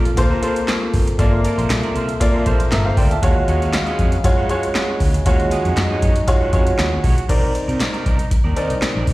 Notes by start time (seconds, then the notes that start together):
Already playing: A#1 C3 A#3 F4 A4
0.05 muted clean electric guitar stroke, closed hi-hat
0.17 D2 A#3 F4 A4 C5, muted clean electric guitar stroke, kick, closed hi-hat
0.31 F4 A#4 C5
0.42 A#3 F4 A4 A#4 C5, closed hi-hat
0.56 muted clean electric guitar stroke, closed hi-hat
0.68 muted clean electric guitar stroke, snare, clap, closed hi-hat
0.81 muted clean electric guitar stroke
0.94 F#1, kick, open hi-hat
1.07 muted clean electric guitar stroke, closed hi-hat
1.19 G1 A#3 F4 A4 A#4 C5 D5 E5, kick, closed hi-hat
1.33 muted clean electric guitar stroke
1.44 F4 A#4 D5, closed hi-hat
1.58 A#1 F4 A#4 C5, closed hi-hat
1.70 C2, snare, clap, closed hi-hat
1.83 F4 A#4 D5, closed hi-hat
1.95 C2 F4 A#4 C5, closed hi-hat
2.09 muted clean electric guitar stroke, closed hi-hat
2.20 A#3 F4 A4 D5, muted clean electric guitar stroke, kick, closed hi-hat
2.34 F4 A#4 C5
2.46 A#1 A3 F4 A4 A#4 C5, kick, closed hi-hat
2.52 A#3
2.60 muted clean electric guitar stroke, closed hi-hat
2.71 G1 A#4 E5, muted clean electric guitar stroke, snare, clap, closed hi-hat
2.85 C5 F5, muted clean electric guitar stroke
2.97 D2 F4 A#4 C5 D5 G5, kick, open hi-hat
3.10 E5 A5, muted clean electric guitar stroke, closed hi-hat
3.22 D#2 C#3 F#3 G#3 F4 F#4 G#4 C#5 F5, kick, closed hi-hat
3.36 muted clean electric guitar stroke
3.48 D#2 F#4 G#4 C#5, closed hi-hat
3.61 F#4 G#4 C#5, closed hi-hat
3.73 snare, clap, closed hi-hat
3.86 F#4 G#4 D#5, closed hi-hat
3.99 F2 F#4 G#4 D#5, kick, closed hi-hat
4.12 muted clean electric guitar stroke, closed hi-hat
4.24 F#2 G#3 F4 F#4 C#5, muted clean electric guitar stroke, kick, closed hi-hat
4.38 F#4 G#4 C#5
4.49 G#3 F4 F#4 G#4 C#5, closed hi-hat
4.63 muted clean electric guitar stroke, closed hi-hat
4.75 muted clean electric guitar stroke, snare, clap, closed hi-hat
4.89 muted clean electric guitar stroke
5.00 D2, kick, open hi-hat
5.14 muted clean electric guitar stroke, closed hi-hat
5.26 D#2 G#3 D#4 F4 F#4 G#4 C#5, kick, closed hi-hat
5.40 muted clean electric guitar stroke, closed hi-hat
5.51 F#4 G#4 D#5, closed hi-hat
5.65 F2 F#4 G#4 C#5, closed hi-hat
5.77 F#2, muted clean electric guitar stroke, snare, clap, closed hi-hat
5.90 F#4 G#4 D#5
6.02 F#2 F#4 G#4 C#5, kick, closed hi-hat
6.16 muted clean electric guitar stroke, closed hi-hat
6.27 G#3 F4 F#4 C#5, muted clean electric guitar stroke, kick, closed hi-hat
6.41 F#4 G#4 C#5
6.53 F2 G#3 F4 F#4 G#4 C#5, kick, closed hi-hat
6.67 muted clean electric guitar stroke, closed hi-hat
6.78 D#2, muted clean electric guitar stroke, snare, clap, closed hi-hat
6.92 muted clean electric guitar stroke
7.03 B1 F#4 G#4 C#5, kick, open hi-hat
7.17 muted clean electric guitar stroke, closed hi-hat
7.29 C2 C4 D#4 A#4 D5, kick, closed hi-hat, crash
7.54 muted clean electric guitar stroke, closed hi-hat
7.68 C3 D#4 A#4 D5, closed hi-hat
7.80 muted clean electric guitar stroke, snare, clap, closed hi-hat
7.93 D#4 A#4 D5, closed hi-hat
8.05 C2 D#4 A#4 D5, kick, closed hi-hat
8.19 muted clean electric guitar stroke, closed hi-hat
8.31 muted clean electric guitar stroke, kick, closed hi-hat
8.44 D#2 D#4 A#4 D5
8.56 C4 D#4 A#4 D5, closed hi-hat
8.70 C2, muted clean electric guitar stroke, closed hi-hat
8.82 muted clean electric guitar stroke, snare, clap, closed hi-hat
8.95 A#1 D#4 A#4 D5
9.07 D#1, muted clean electric guitar stroke, kick, open hi-hat